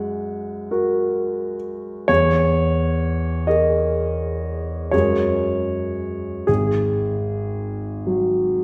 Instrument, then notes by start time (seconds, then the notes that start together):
grand piano
Already playing: F#2 G#3 F#5
0.71 F#4 A#4
2.08 E2 C#5
3.47 G#4 A#4 D#5
4.91 F#2 G#3 C#4 G#4 A#4 C#5
6.47 G#1 G#4
8.07 F#3